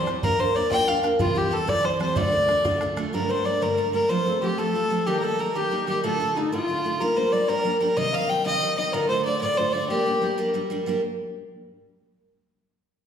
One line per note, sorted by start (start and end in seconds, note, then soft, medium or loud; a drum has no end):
0.06 0.23 E3 medium
0.06 0.23 G3 medium
0.06 0.23 C4 medium
0.06 0.24 G4 medium
0.06 bodhran medium
0.23 0.38 A#3 medium
0.23 0.38 D4 medium
0.23 0.39 F4 medium
0.23 0.40 A#4 medium
0.23 0.41 A#4 loud
0.23 0.40 A#4 medium
0.23 bodhran medium
0.38 0.54 A#3 medium
0.38 0.55 D4 medium
0.38 0.55 F4 medium
0.38 0.56 A#4 medium
0.38 0.56 C5 medium
0.38 0.57 C5 loud
0.38 bodhran soft
0.55 0.70 A#3 medium
0.55 0.71 D4 medium
0.55 0.71 F4 medium
0.55 0.71 A#4 medium
0.55 0.73 D5 medium
0.55 0.71 D5 loud
0.71 0.86 A#3 medium
0.71 0.87 D4 medium
0.71 0.87 F4 medium
0.71 0.88 A#4 medium
0.71 0.90 G5 loud
0.71 1.04 G5 loud
0.71 bodhran medium
0.87 1.02 A#3 medium
0.87 1.03 D4 medium
0.87 1.04 F4 medium
0.87 1.04 A#4 medium
0.87 1.04 F5 loud
0.87 bodhran medium
1.03 1.19 A#3 medium
1.03 1.20 D4 medium
1.03 1.20 F4 medium
1.03 1.20 A#4 medium
1.03 bodhran medium
1.19 1.36 C3 medium
1.19 1.33 E3 medium
1.19 1.34 G3 medium
1.19 1.35 C4 medium
1.19 1.34 F4 medium
1.19 1.38 F4 loud
1.19 1.35 G4 medium
1.19 bodhran medium
1.35 1.50 E3 medium
1.35 1.51 G3 medium
1.35 1.51 C4 medium
1.35 1.51 G4 medium
1.35 1.52 G4 medium
1.35 1.54 G4 medium
1.35 bodhran soft
1.51 1.67 E3 medium
1.51 1.67 G3 medium
1.51 1.67 C4 medium
1.51 1.67 G4 medium
1.51 1.70 A4 medium
1.51 1.71 A4 loud
1.67 1.84 C3 medium
1.67 1.82 E3 medium
1.67 1.83 G3 medium
1.67 1.83 C4 medium
1.67 1.84 G4 medium
1.67 1.84 D5 medium
1.67 1.86 D5 loud
1.67 bodhran medium
1.83 1.98 E3 medium
1.83 1.99 G3 medium
1.83 1.99 C4 medium
1.83 2.00 G4 medium
1.83 2.01 C5 loud
1.83 bodhran medium
1.99 2.16 E3 medium
1.99 2.16 G3 medium
1.99 2.16 C4 medium
1.99 2.16 G4 medium
1.99 2.18 C5 medium
1.99 2.19 C5 medium
1.99 bodhran medium
2.15 2.32 D2 medium
2.15 2.32 A2 medium
2.15 2.30 D3 medium
2.15 2.31 A3 medium
2.15 2.32 D4 medium
2.15 2.32 F4 medium
2.15 2.81 D5 loud
2.15 2.22 E5 medium
2.15 bodhran medium
2.21 2.81 D5 medium
2.32 2.46 D3 medium
2.32 2.47 A3 medium
2.32 2.48 D4 medium
2.32 2.48 F4 medium
2.32 bodhran soft
2.48 2.64 D3 medium
2.48 2.64 A3 medium
2.48 2.64 D4 medium
2.48 2.64 F4 medium
2.48 bodhran medium
2.64 2.81 D2 medium
2.64 2.81 A2 medium
2.64 2.80 D3 medium
2.64 2.81 A3 medium
2.64 2.81 D4 medium
2.64 2.81 F4 medium
2.64 bodhran medium
2.81 2.95 D3 medium
2.81 2.96 A3 medium
2.81 2.97 D4 medium
2.81 2.97 F4 medium
2.81 bodhran medium
2.97 3.12 D3 medium
2.97 3.13 A3 medium
2.97 3.13 D4 medium
2.97 3.14 F4 medium
2.97 bodhran medium
3.13 3.29 G2 medium
3.13 3.29 D3 medium
3.13 3.27 G3 medium
3.13 3.29 A3 medium
3.13 3.28 A#3 medium
3.13 3.29 D4 medium
3.13 3.30 A#4 medium
3.13 3.32 A#4 medium
3.29 3.44 G3 medium
3.29 3.45 A3 medium
3.29 3.45 A#3 medium
3.29 3.46 D4 medium
3.29 3.46 C5 medium
3.29 3.47 C5 medium
3.45 3.61 G3 medium
3.45 3.61 A3 medium
3.45 3.61 A#3 medium
3.45 3.61 D4 medium
3.45 3.63 D5 medium
3.45 3.64 D5 medium
3.61 3.78 G2 medium
3.61 3.78 D3 medium
3.61 3.76 G3 medium
3.61 3.77 A3 medium
3.61 3.77 A#3 medium
3.61 3.78 D4 medium
3.61 3.93 A#4 medium
3.61 3.92 A#4 medium
3.77 3.92 G3 medium
3.77 3.94 A3 medium
3.77 3.93 A#3 medium
3.77 3.94 D4 medium
3.93 4.09 G3 medium
3.93 4.09 A3 medium
3.93 4.09 A#3 medium
3.93 4.10 D4 medium
3.93 4.11 A#4 medium
3.93 4.12 A#4 medium
4.10 4.25 F3 medium
4.10 4.26 A3 medium
4.10 4.26 C4 medium
4.10 4.27 F4 medium
4.10 4.42 C5 loud
4.10 4.28 C5 medium
4.26 4.41 F3 medium
4.26 4.42 A3 medium
4.26 4.42 C4 medium
4.26 4.43 F4 medium
4.26 4.41 A4 medium
4.42 4.57 F3 medium
4.42 4.58 A3 medium
4.42 4.58 C4 medium
4.42 4.58 F4 medium
4.42 4.60 G4 medium
4.58 4.73 F3 medium
4.58 4.75 A3 medium
4.58 4.74 C4 medium
4.58 4.75 F4 medium
4.58 5.08 A4 medium
4.58 5.08 A4 loud
4.74 4.89 F3 medium
4.74 4.90 A3 medium
4.74 4.90 C4 medium
4.74 4.91 F4 medium
4.90 5.06 F3 medium
4.90 5.07 A3 medium
4.90 5.07 C4 medium
4.90 5.07 F4 medium
5.06 5.21 D#3 medium
5.06 5.22 G3 medium
5.06 5.23 A#3 medium
5.06 5.23 D#4 medium
5.06 5.19 G4 loud
5.06 5.24 G4 medium
5.19 5.37 D#3 medium
5.19 5.40 A4 medium
5.19 5.25 A#4 medium
5.23 5.38 G3 medium
5.23 5.39 A#3 medium
5.23 5.39 D#4 medium
5.23 5.41 A4 loud
5.38 5.54 D#3 medium
5.38 5.55 G3 medium
5.38 5.55 A#3 medium
5.38 5.55 D#4 medium
5.38 5.55 A#4 medium
5.38 5.57 A#4 medium
5.55 5.70 D#3 medium
5.55 5.71 G3 medium
5.55 5.71 A#3 medium
5.55 5.72 D#4 medium
5.55 5.85 G4 medium
5.55 5.87 G4 loud
5.71 5.86 D#3 medium
5.71 5.87 G3 medium
5.71 5.87 A#3 medium
5.71 5.88 D#4 medium
5.87 6.03 D#3 medium
5.87 6.04 G3 medium
5.87 6.04 A#3 medium
5.87 6.04 D#4 medium
5.87 6.02 G4 medium
5.87 6.03 G4 medium
6.03 6.19 D2 medium
6.03 6.20 A2 medium
6.03 6.19 D3 medium
6.03 6.20 A3 medium
6.03 6.20 D4 medium
6.03 6.20 F4 medium
6.03 6.37 A4 medium
6.03 6.38 A4 medium
6.20 6.34 D3 medium
6.20 6.35 A3 medium
6.20 6.36 D4 medium
6.20 6.36 F4 medium
6.35 6.51 D3 medium
6.35 6.52 A3 medium
6.35 6.52 D4 medium
6.35 6.53 D#4 medium
6.35 6.52 D#4 medium
6.35 6.52 F4 medium
6.52 6.68 D2 medium
6.52 6.68 A2 medium
6.52 6.67 D3 medium
6.52 6.67 A3 medium
6.52 6.68 D4 medium
6.52 7.02 F4 medium
6.52 7.02 F4 loud
6.52 6.69 F4 medium
6.68 6.83 D3 medium
6.68 6.84 A3 medium
6.68 6.85 D4 medium
6.68 6.85 F4 medium
6.84 7.00 D3 medium
6.84 7.01 A3 medium
6.84 7.00 D4 medium
6.84 7.01 F4 medium
7.00 7.15 G3 medium
7.00 7.16 A#3 medium
7.00 7.16 D4 medium
7.00 7.17 G4 medium
7.00 7.18 A#4 medium
7.00 7.34 A#4 medium
7.16 7.32 G3 medium
7.16 7.33 A#3 medium
7.16 7.33 D4 medium
7.16 7.33 G4 medium
7.16 7.33 C5 medium
7.32 7.48 G3 medium
7.32 7.48 A#3 medium
7.32 7.49 D4 medium
7.32 7.49 G4 medium
7.32 7.50 D5 medium
7.48 7.63 G3 medium
7.48 7.64 A#3 medium
7.48 7.65 D4 medium
7.48 7.65 G4 medium
7.48 7.80 A#4 loud
7.48 7.53 C5 medium
7.52 7.81 A#4 medium
7.64 7.79 G3 medium
7.64 7.80 A#3 medium
7.64 7.81 D4 medium
7.64 7.81 G4 medium
7.80 7.96 G3 medium
7.80 7.97 A#3 medium
7.80 7.97 D4 medium
7.80 7.98 G4 medium
7.80 7.98 A#4 medium
7.80 7.99 A#4 medium
7.97 8.13 C3 medium
7.97 8.11 D#3 medium
7.97 8.12 G3 medium
7.97 8.13 C4 medium
7.97 8.13 D#4 medium
7.97 8.15 D#5 loud
7.97 8.14 D#5 medium
8.12 8.28 D#3 medium
8.12 8.28 G3 medium
8.12 8.29 C4 medium
8.12 8.29 D#4 medium
8.12 8.30 F5 medium
8.12 8.31 F5 loud
8.29 8.43 D#3 medium
8.29 8.44 G3 medium
8.29 8.44 C4 medium
8.29 8.45 D#4 medium
8.29 8.44 G5 medium
8.29 8.45 G5 medium
8.44 8.61 C3 medium
8.44 8.59 D#3 medium
8.44 8.60 G3 medium
8.44 8.61 C4 medium
8.44 8.61 D#4 medium
8.44 8.75 D#5 loud
8.44 8.75 D#5 medium
8.44 8.49 F5 medium
8.60 8.76 D#3 medium
8.60 8.76 G3 medium
8.60 8.77 C4 medium
8.60 8.77 D#4 medium
8.76 8.93 D#3 medium
8.76 8.94 G3 medium
8.76 8.94 C4 medium
8.76 8.94 D#4 medium
8.76 8.94 D#5 medium
8.76 8.95 D#5 loud
8.92 9.09 D2 medium
8.92 9.10 A2 medium
8.92 9.08 D3 medium
8.92 9.08 A3 medium
8.92 9.09 D4 medium
8.92 9.09 F4 medium
8.92 9.10 A#4 medium
8.92 9.08 A#4 loud
9.09 9.24 D3 medium
9.09 9.25 A3 medium
9.09 9.26 D4 medium
9.09 9.26 F4 medium
9.09 9.24 C5 loud
9.09 9.27 C5 medium
9.25 9.41 D3 medium
9.25 9.41 A3 medium
9.25 9.41 D4 medium
9.25 9.42 F4 medium
9.25 9.40 D5 loud
9.25 9.41 D5 medium
9.41 9.58 D2 medium
9.41 9.58 A2 medium
9.41 9.57 D3 medium
9.41 9.57 A3 medium
9.41 9.58 D4 medium
9.41 9.59 F4 medium
9.41 9.58 D5 loud
9.41 9.72 D5 medium
9.57 9.72 D3 medium
9.57 9.73 A3 medium
9.57 9.73 D4 medium
9.57 9.74 F4 medium
9.57 9.74 C5 medium
9.72 9.90 D3 medium
9.72 9.90 A3 medium
9.72 9.90 D4 medium
9.72 9.91 F4 medium
9.72 9.89 D5 loud
9.89 10.05 G3 medium
9.89 10.05 A#3 medium
9.89 10.06 D4 medium
9.89 10.50 G4 medium
9.89 10.06 G4 medium
10.06 10.20 G3 medium
10.06 10.21 A#3 medium
10.06 10.22 D4 medium
10.06 10.22 G4 medium
10.22 10.36 G3 medium
10.22 10.37 A#3 medium
10.22 10.37 D4 medium
10.22 10.38 G4 medium
10.38 10.53 G3 medium
10.38 10.54 A#3 medium
10.38 10.54 D4 medium
10.38 10.55 G4 medium
10.54 10.69 G3 medium
10.54 10.70 A#3 medium
10.54 10.70 D4 medium
10.54 10.71 G4 medium
10.70 10.85 G3 medium
10.70 10.86 A#3 medium
10.70 10.87 D4 medium
10.70 10.87 G4 medium
10.86 10.99 G3 medium
10.86 11.00 A#3 medium
10.86 11.00 D4 medium
10.86 11.01 G4 medium